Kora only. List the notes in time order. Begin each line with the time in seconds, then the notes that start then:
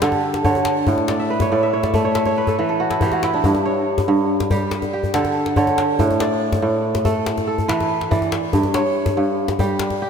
Already playing: G2 G4
0.02 D3 A4
0.44 D3 C#5
0.88 A2
1.09 D5
1.20 E5
1.30 B4
1.42 C#5
1.52 A2 D5
1.63 E5
1.73 C#5
1.84 D5
1.94 A3 E5
2.05 C#5
2.16 E5
2.26 C#5
2.38 B4
2.48 A4
2.59 E3 B4
2.69 A4
2.80 F#4
2.91 E4
3.02 E3 G4
3.12 F#4
3.24 E4
3.34 D4
3.45 G2
3.65 C#5
4.08 G2
4.51 G3 G4
4.93 G4
5.14 D3 A4
5.57 D3 C#5
6.00 A2
6.20 D5
6.62 A2
7.05 A3 A4
7.47 A4
7.68 E3 B4
8.11 E3 D5
8.53 G2
8.75 C#5
9.17 G2
9.59 G3 G4
10.02 G4